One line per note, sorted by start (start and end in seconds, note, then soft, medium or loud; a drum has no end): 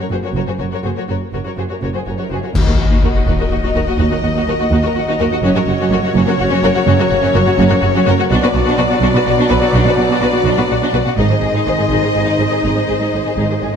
0.01 0.05 A#4 medium
0.01 0.05 C#5 medium
0.10 0.15 F#1 soft
0.10 0.15 F#2 soft
0.10 0.20 A#3 soft
0.10 0.16 F#4 soft
0.10 0.21 F#4 medium
0.10 0.16 G#4 soft
0.10 0.17 C5 soft
0.23 0.28 F#2 soft
0.23 0.28 F#4 soft
0.23 0.29 A#4 soft
0.23 0.29 C#5 soft
0.34 0.39 F#1 medium
0.34 0.40 F#2 medium
0.34 0.40 F#4 medium
0.34 0.40 A#4 soft
0.34 0.42 C#5 medium
0.47 0.52 F#2 soft
0.47 0.52 F#4 soft
0.47 0.52 G#4 soft
0.47 0.52 C5 soft
0.59 0.64 F#1 soft
0.59 0.65 F#2 soft
0.59 0.64 F#4 soft
0.59 0.64 A#4 soft
0.59 0.64 C#5 soft
0.71 0.77 F#2 soft
0.71 0.76 F#4 soft
0.71 0.77 A#4 medium
0.71 0.78 C#5 medium
0.83 0.90 F#1 soft
0.83 0.89 F#2 soft
0.83 0.93 A#3 soft
0.83 0.88 F#4 soft
0.83 0.93 F#4 soft
0.83 0.90 G#4 soft
0.83 0.90 C5 soft
0.96 1.02 F#2 soft
0.96 1.02 F#4 soft
0.96 1.01 A#4 soft
0.96 1.02 C#5 soft
1.08 1.14 F#1 soft
1.08 1.14 F#2 soft
1.08 1.13 F#4 soft
1.08 1.15 A#4 soft
1.08 1.15 C#5 soft
1.33 1.38 F#1 soft
1.33 1.38 F#2 soft
1.33 1.38 F#4 soft
1.33 1.39 A#4 soft
1.33 1.39 C#5 soft
1.44 1.49 F#2 soft
1.44 1.49 F#4 soft
1.44 1.51 A#4 soft
1.44 1.51 C#5 soft
1.56 1.63 F#1 soft
1.56 1.62 F#2 soft
1.56 1.67 A#3 soft
1.56 1.62 F#4 soft
1.56 1.67 F#4 soft
1.56 1.63 G#4 soft
1.56 1.63 C5 soft
1.69 1.75 F#2 soft
1.69 1.74 F#4 soft
1.69 1.75 A#4 soft
1.69 1.74 C#5 soft
1.81 1.87 F#1 soft
1.81 1.86 F#2 soft
1.81 1.86 F#4 soft
1.81 1.88 A#4 soft
1.81 1.88 C#5 soft
1.93 1.98 F#2 soft
1.93 1.99 F#4 soft
1.93 2.01 G#4 soft
1.93 1.99 C5 soft
2.06 2.12 F#1 soft
2.06 2.11 F#2 soft
2.06 2.11 F#4 soft
2.06 2.13 A#4 soft
2.06 2.11 C#5 soft
2.17 2.22 F#2 soft
2.17 2.23 F#4 soft
2.17 2.23 C#5 medium
2.22 2.26 A#4 medium
2.30 2.36 F#1 soft
2.30 2.35 F#2 soft
2.30 2.40 A#3 soft
2.30 2.36 F#4 soft
2.30 2.40 F#4 soft
2.30 2.38 G#4 soft
2.30 2.35 C5 soft
2.42 2.47 F#2 soft
2.42 2.49 F#4 soft
2.42 2.48 C#5 soft
2.47 2.51 A#4 soft
2.54 2.59 D#2 medium
2.54 5.40 A#2 medium
2.54 3.23 D#3 medium
2.54 5.40 F#3 medium
2.54 5.40 A#3 medium
2.54 5.40 D#4 medium
2.54 2.61 D#4 medium
2.54 5.39 F#4 medium
2.54 2.60 F#4 medium
2.54 8.26 F#4 medium
2.54 8.26 A#4 medium
2.54 6.12 D#5 medium
2.54 5.40 D#5 medium
2.54 8.26 F#5 medium
2.54 concert bass drum medium
2.54 crash medium
2.54 sub drop medium
2.67 2.72 D#2 medium
2.67 2.72 F#4 soft
2.67 2.73 A#4 soft
2.78 2.83 D#2 medium
2.78 2.84 D#2 medium
2.78 2.84 F#4 medium
2.90 2.95 D#2 medium
2.90 2.95 D#4 medium
2.90 2.96 F#4 medium
3.02 3.07 D#2 medium
3.02 3.09 F#4 medium
3.02 3.08 A#4 medium
3.13 3.18 D#2 medium
3.13 3.21 F#4 medium
3.26 3.31 D#2 medium
3.26 3.34 D#4 medium
3.26 3.32 F#4 medium
3.39 3.44 D#2 medium
3.39 3.45 F#4 medium
3.39 3.45 A#4 medium
3.49 3.55 D#2 medium
3.49 3.56 D#2 medium
3.49 3.55 F#4 medium
3.49 3.57 F#4 medium
3.63 3.68 D#2 medium
3.63 3.69 D#4 medium
3.63 3.68 F#4 medium
3.74 3.79 D#2 medium
3.74 3.80 D#2 medium
3.74 3.80 F#4 medium
3.74 3.80 A#4 medium
3.87 3.92 D#2 medium
3.87 3.92 F#4 medium
3.87 3.94 F#4 medium
3.98 4.03 D#2 medium
3.98 4.04 D#2 medium
3.98 4.04 D#4 medium
3.98 4.03 F#4 medium
4.10 4.17 D#2 medium
4.10 4.16 F#4 medium
4.10 4.15 A#4 medium
4.22 4.27 D#2 medium
4.22 4.28 D#2 medium
4.22 4.28 F#4 medium
4.35 4.40 D#2 medium
4.35 4.41 D#4 medium
4.35 4.41 F#4 medium
4.46 4.51 D#2 medium
4.46 4.52 D#2 medium
4.46 4.53 F#4 medium
4.46 4.53 A#4 medium
4.59 4.65 D#2 medium
4.59 4.64 F#4 medium
4.59 4.65 F#4 medium
4.71 4.76 D#2 loud
4.71 4.77 D#2 medium
4.71 4.77 D#4 medium
4.71 4.76 F#4 loud
4.83 4.89 D#2 medium
4.83 4.88 F#4 medium
4.83 4.90 A#4 medium
4.94 4.99 D#2 medium
4.94 5.01 D#2 medium
4.94 5.00 F#4 medium
4.94 5.02 F#4 medium
5.08 5.13 D#2 medium
5.08 5.13 D#4 loud
5.08 5.12 F#4 medium
5.19 5.24 D#2 medium
5.19 5.25 D#2 medium
5.19 5.25 F#4 medium
5.19 5.24 A#4 medium
5.31 5.37 D#2 medium
5.31 5.36 F#4 medium
5.31 5.37 F#4 medium
5.43 5.48 F#1 medium
5.43 5.49 F#2 loud
5.43 8.27 C#3 medium
5.43 8.28 F#3 loud
5.43 8.27 A#3 medium
5.43 8.30 C#4 loud
5.43 5.49 C#4 loud
5.43 5.48 F#4 loud
5.43 8.26 F#4 medium
5.43 8.27 C#5 loud
5.55 5.61 F#2 medium
5.55 5.60 F#4 medium
5.55 5.60 A#4 medium
5.67 5.72 F#1 medium
5.67 5.73 F#2 medium
5.67 5.73 F#4 medium
5.80 5.84 F#2 loud
5.80 5.85 C#4 loud
5.80 5.85 F#4 loud
5.90 5.95 F#1 medium
5.90 5.95 F#2 medium
5.90 5.98 F#4 medium
5.90 5.97 A#4 medium
6.02 6.07 F#2 medium
6.02 6.08 F#4 medium
6.02 6.10 F#4 medium
6.15 6.20 F#1 loud
6.15 6.20 F#2 loud
6.15 6.20 C#4 loud
6.15 6.21 F#4 loud
6.15 8.31 C#5 loud
6.26 6.31 F#2 medium
6.26 6.33 F#4 medium
6.26 6.31 A#4 medium
6.37 6.44 F#1 medium
6.37 6.43 F#2 medium
6.37 6.44 F#4 loud
6.37 6.46 F#4 medium
6.50 6.55 F#2 loud
6.50 6.55 C#4 loud
6.50 6.58 F#4 loud
6.62 6.68 F#1 medium
6.62 6.67 F#2 medium
6.62 6.69 F#4 medium
6.62 6.68 A#4 medium
6.74 6.79 F#2 medium
6.74 6.79 F#4 medium
6.74 6.81 F#4 medium
6.87 6.92 F#1 loud
6.87 6.92 F#2 loud
6.87 6.92 C#4 loud
6.87 6.92 F#4 loud
6.99 7.04 F#2 medium
6.99 7.04 F#4 medium
6.99 7.04 A#4 medium
7.10 7.15 F#1 medium
7.10 7.17 F#2 medium
7.10 7.15 F#4 medium
7.22 7.28 F#2 loud
7.22 7.27 C#4 loud
7.22 7.27 F#4 loud
7.33 7.40 F#1 medium
7.33 7.39 F#2 medium
7.33 7.40 F#4 medium
7.33 7.38 A#4 medium
7.46 7.51 F#2 medium
7.46 7.51 F#4 medium
7.57 7.64 F#1 loud
7.57 7.63 F#2 loud
7.57 7.62 C#4 loud
7.57 7.63 F#4 loud
7.67 7.76 F#2 medium
7.67 7.75 F#4 medium
7.67 7.73 A#4 medium
7.81 7.87 F#1 medium
7.81 7.87 F#2 medium
7.81 7.86 F#4 medium
7.94 7.99 F#2 loud
7.94 7.99 C#4 loud
7.94 8.00 F#4 loud
8.06 8.12 F#1 medium
8.06 8.12 F#2 medium
8.06 8.11 F#4 loud
8.06 8.13 A#4 medium
8.19 8.24 F#2 medium
8.19 8.23 F#4 medium
8.19 8.24 F#4 medium
8.27 8.36 B1 loud
8.27 11.02 B2 loud
8.27 8.35 B2 loud
8.27 11.02 F#3 loud
8.27 11.01 B3 loud
8.27 11.18 D4 loud
8.27 11.13 F#4 loud
8.27 8.35 F#4 loud
8.27 11.01 F#4 loud
8.27 11.18 B4 loud
8.27 11.14 D5 loud
8.27 11.00 D5 loud
8.27 11.14 F#5 loud
8.32 8.37 D4 loud
8.42 8.48 B2 medium
8.42 8.47 F#4 medium
8.42 8.48 B4 medium
8.54 8.59 B1 medium
8.54 8.59 B2 medium
8.54 8.59 F#4 medium
8.54 8.61 F#4 medium
8.65 8.71 B2 loud
8.65 8.72 D4 loud
8.65 8.70 F#4 loud
8.78 8.83 B1 medium
8.78 8.83 B2 medium
8.78 8.83 F#4 medium
8.78 8.83 B4 medium
8.89 8.94 B2 medium
8.89 8.96 F#4 medium
9.01 9.06 B1 loud
9.01 9.07 B2 loud
9.01 9.07 D4 loud
9.01 9.07 F#4 loud
9.14 9.19 B2 medium
9.14 9.20 F#4 medium
9.14 9.20 B4 medium
9.26 9.31 B1 medium
9.26 9.31 B2 medium
9.26 9.31 F#4 medium
9.26 9.32 F#4 medium
9.38 9.42 B2 loud
9.38 9.44 D4 loud
9.38 9.43 F#4 loud
9.49 9.55 B1 medium
9.49 9.54 B2 medium
9.49 9.55 F#4 medium
9.49 9.54 B4 medium
9.60 9.66 B2 medium
9.60 9.65 F#4 loud
9.60 9.67 F#4 medium
9.72 9.79 B1 loud
9.72 9.77 B2 loud
9.72 9.79 F#4 loud
9.77 9.81 D4 loud
9.84 9.89 B2 medium
9.84 9.91 F#4 medium
9.89 9.93 B4 medium
9.96 10.02 B1 medium
9.96 10.01 B2 medium
9.96 10.03 F#4 medium
10.01 10.05 F#4 medium
10.09 10.14 B2 loud
10.09 10.15 F#4 loud
10.13 10.18 D4 loud
10.20 10.26 B1 medium
10.20 10.26 B2 medium
10.20 10.27 F#4 medium
10.20 10.28 B4 medium
10.32 10.38 B2 medium
10.32 10.38 F#4 medium
10.32 10.40 F#4 medium
10.44 10.50 B1 loud
10.44 10.50 B2 loud
10.44 10.52 D4 loud
10.44 10.49 F#4 loud
10.57 10.62 B2 medium
10.57 10.62 F#4 medium
10.57 10.63 B4 medium
10.69 10.75 B1 medium
10.69 10.74 B2 medium
10.69 10.75 F#4 medium
10.82 10.87 B2 loud
10.82 10.87 D4 loud
10.82 10.87 F#4 loud
10.93 10.98 B1 medium
10.93 10.98 B2 medium
10.93 10.99 F#4 medium
10.93 10.99 B4 medium
11.05 11.10 B2 medium
11.05 11.10 F#4 medium
11.05 11.11 F#4 medium
11.15 11.23 G#1 medium
11.15 11.21 G#2 loud
11.15 13.76 D#3 medium
11.15 13.76 G#3 medium
11.15 13.76 C4 medium
11.15 13.76 D#4 loud
11.15 13.76 D#4 medium
11.15 11.24 D#4 loud
11.15 13.76 G#4 loud
11.15 11.23 G#4 medium
11.15 13.76 C5 loud
11.15 13.76 D#5 medium
11.15 13.76 D#5 loud
11.29 11.34 G#2 medium
11.29 11.35 G#4 medium
11.29 11.35 C5 medium
11.41 11.47 G#1 medium
11.41 11.47 G#2 medium
11.41 11.47 G#4 medium
11.53 11.58 G#2 medium
11.53 11.60 D#4 loud
11.53 11.60 G#4 medium
11.66 11.72 G#1 medium
11.66 11.71 G#2 medium
11.66 11.71 G#4 medium
11.66 11.72 C5 medium
11.77 11.83 G#2 medium
11.77 11.82 G#4 medium
11.77 11.84 G#4 medium
11.90 11.95 G#1 medium
11.90 11.95 G#2 medium
11.90 11.96 D#4 medium
11.90 11.96 G#4 medium
12.02 12.08 G#2 medium
12.02 12.09 G#4 medium
12.02 12.07 C5 medium
12.14 12.20 G#1 medium
12.14 12.19 G#2 medium
12.14 12.19 G#4 medium
12.14 12.21 G#4 medium
12.24 12.32 G#2 medium
12.24 12.30 D#4 medium
12.24 12.33 G#4 medium
12.37 12.44 G#1 medium
12.37 12.44 G#2 medium
12.37 12.44 G#4 medium
12.37 12.43 C5 medium
12.50 12.56 G#2 medium
12.50 12.55 G#4 medium
12.50 12.57 G#4 medium
12.62 12.69 G#1 medium
12.62 12.68 G#2 medium
12.62 12.68 D#4 medium
12.62 12.69 G#4 medium
12.75 12.81 G#2 medium
12.75 12.82 G#4 soft
12.75 12.80 C5 soft
12.87 12.95 G#1 medium
12.87 12.93 G#2 medium
12.87 12.93 G#4 medium
12.87 12.94 G#4 medium
12.99 13.05 G#2 medium
12.99 13.06 D#4 medium
12.99 13.06 G#4 medium
13.12 13.18 G#1 soft
13.12 13.17 G#2 soft
13.12 13.19 G#4 medium
13.12 13.19 C5 medium
13.25 13.30 G#2 medium
13.25 13.31 G#4 soft
13.25 13.31 G#4 medium
13.37 13.42 G#1 medium
13.37 13.42 G#2 medium
13.37 13.43 D#4 medium
13.37 13.43 G#4 medium
13.49 13.54 G#2 medium
13.49 13.55 G#4 soft
13.49 13.56 C5 soft
13.61 13.67 G#1 soft
13.61 13.67 G#2 medium
13.61 13.67 G#4 medium
13.61 13.68 G#4 medium
13.73 13.76 G#2 medium